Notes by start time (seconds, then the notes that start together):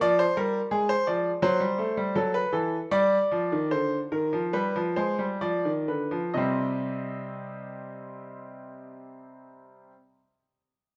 0.01 F3 D5
0.19 C5
0.37 G3 A#4
0.71 G#3 G#4
0.89 C5
1.07 F3 D5
1.42 F#3 C5
1.60 G3
1.78 A3
1.97 G3
2.15 F#3 A4
2.34 B4
2.52 E3 A4
2.91 G3 D5
3.31 F3
3.52 D#3
3.71 D3 C5
4.12 D#3 A#4
4.33 F3
4.53 G3 B4
4.76 F3
4.96 G#3 C5
5.19 G3
5.41 F3 D5
5.65 D#3
5.88 D3 B4
6.11 F3
6.34 C3 G3 C4 D#5